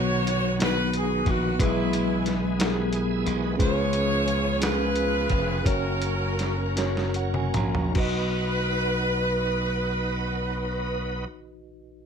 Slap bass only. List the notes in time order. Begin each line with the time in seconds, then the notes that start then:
Already playing: B1
1.27 A#1
1.60 B1
3.27 B1
3.60 C#2
5.31 F1
5.66 F#1
7.56 A#1
7.96 B1